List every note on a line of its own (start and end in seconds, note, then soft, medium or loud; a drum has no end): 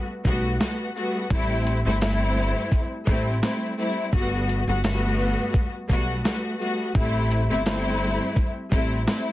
0.25 0.56 B1 loud
0.25 0.57 G3 loud
0.25 0.57 A3 medium
0.25 0.58 B3 medium
0.25 0.58 F#4 loud
0.25 kick medium
0.25 closed hi-hat medium
0.25 shaker medium
0.25 shaker soft
0.44 shaker soft
0.59 0.92 G3 medium
0.59 0.92 A3 medium
0.59 0.93 B3 medium
0.59 0.93 F#4 medium
0.59 snare loud
0.59 closed hi-hat medium
0.59 shaker medium
0.94 1.27 G3 medium
0.94 1.28 A3 medium
0.94 1.28 B3 medium
0.94 1.28 F#4 medium
0.94 shaker soft
0.94 shaker medium
1.15 shaker soft
1.30 1.81 A1 loud
1.30 1.80 G3 loud
1.30 1.80 A3 medium
1.30 1.81 C4 medium
1.30 1.81 E4 loud
1.30 kick loud
1.30 closed hi-hat medium
1.30 shaker medium
1.66 closed hi-hat medium
1.66 shaker soft
1.66 shaker medium
1.84 2.52 G1 medium
1.84 1.98 G3 medium
1.84 1.99 A3 medium
1.84 1.99 C4 medium
1.84 2.00 E4 loud
1.84 shaker soft
2.00 2.83 G3 loud
2.00 2.83 A3 medium
2.00 2.83 C4 medium
2.00 2.83 E4 loud
2.00 snare loud
2.00 closed hi-hat medium
2.00 shaker medium
2.36 shaker soft
2.37 shaker medium
2.55 shaker medium
2.72 kick medium
2.72 closed hi-hat medium
2.72 shaker medium
3.06 3.39 A1 medium
3.06 3.39 G3 medium
3.06 3.39 A3 medium
3.06 3.40 C4 medium
3.06 3.40 E4 medium
3.06 kick medium
3.06 closed hi-hat soft
3.06 shaker medium
3.26 shaker soft
3.42 3.75 G3 medium
3.42 3.75 A3 medium
3.42 3.75 C4 medium
3.42 3.75 E4 medium
3.42 snare loud
3.42 closed hi-hat medium
3.42 shaker medium
3.77 4.10 G3 medium
3.77 4.10 A3 medium
3.77 4.10 C4 medium
3.77 4.11 E4 medium
3.77 shaker soft
3.79 shaker medium
3.97 shaker soft
4.12 4.63 G1 loud
4.12 4.62 G3 medium
4.12 4.63 A3 medium
4.12 4.63 B3 medium
4.12 4.63 F#4 loud
4.12 kick loud
4.12 closed hi-hat medium
4.12 shaker medium
4.48 closed hi-hat medium
4.48 shaker soft
4.48 shaker medium
4.67 5.34 G1 medium
4.67 4.81 G3 medium
4.67 4.82 A3 medium
4.67 4.82 B3 medium
4.67 4.83 F#4 loud
4.67 shaker soft
4.83 5.65 G3 loud
4.83 5.65 A3 medium
4.83 5.66 B3 loud
4.83 5.66 F#4 loud
4.83 snare loud
4.83 closed hi-hat medium
4.83 shaker medium
5.18 shaker soft
5.20 shaker medium
5.38 shaker medium
5.54 kick medium
5.54 closed hi-hat medium
5.54 shaker medium
5.89 6.21 B1 loud
5.89 6.22 G3 loud
5.89 6.22 A3 medium
5.89 6.22 B3 medium
5.89 6.22 F#4 loud
5.89 kick medium
5.89 closed hi-hat medium
5.89 shaker medium
6.08 shaker soft
6.23 6.57 G3 medium
6.23 6.57 A3 medium
6.23 6.57 B3 medium
6.23 6.57 F#4 medium
6.23 snare loud
6.23 closed hi-hat medium
6.23 shaker medium
6.58 6.92 G3 medium
6.58 6.92 A3 medium
6.58 6.92 B3 medium
6.58 6.93 F#4 medium
6.58 shaker soft
6.58 shaker medium
6.79 shaker soft
6.94 7.46 A1 loud
6.94 7.45 G3 loud
6.94 7.45 A3 medium
6.94 7.45 C4 medium
6.94 7.45 E4 loud
6.94 kick loud
6.94 closed hi-hat medium
6.94 shaker medium
7.31 closed hi-hat medium
7.31 shaker soft
7.31 shaker medium
7.49 8.16 G1 medium
7.49 7.63 G3 medium
7.49 7.64 A3 medium
7.49 7.64 C4 medium
7.49 7.65 E4 loud
7.49 shaker soft
7.64 8.47 G3 medium
7.64 8.47 A3 medium
7.64 8.48 C4 medium
7.64 8.48 E4 loud
7.64 snare loud
7.64 closed hi-hat medium
7.64 shaker medium
8.01 shaker soft
8.02 shaker medium
8.20 shaker medium
8.36 kick loud
8.36 closed hi-hat medium
8.36 shaker medium
8.70 9.03 A1 medium
8.70 9.04 G3 medium
8.70 9.04 A3 medium
8.70 9.04 C4 medium
8.70 9.04 E4 medium
8.70 kick medium
8.70 closed hi-hat soft
8.70 shaker medium
8.70 shaker soft
8.91 shaker soft
9.06 9.32 G3 medium
9.06 9.32 A3 medium
9.06 9.32 C4 medium
9.06 9.32 E4 medium
9.06 snare loud
9.06 closed hi-hat medium
9.06 shaker medium